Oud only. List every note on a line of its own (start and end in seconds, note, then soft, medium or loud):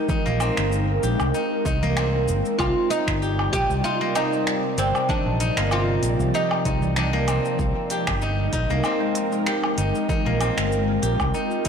2.59 2.90 F4 loud
2.90 3.52 D#4 medium
3.53 3.84 G4 loud
3.84 4.15 F4 loud
4.16 4.78 D#4 loud
4.78 5.09 C4 medium
5.10 5.72 D4 medium
5.72 6.34 F4 medium
6.35 6.93 D#4 loud
6.98 7.42 D4 medium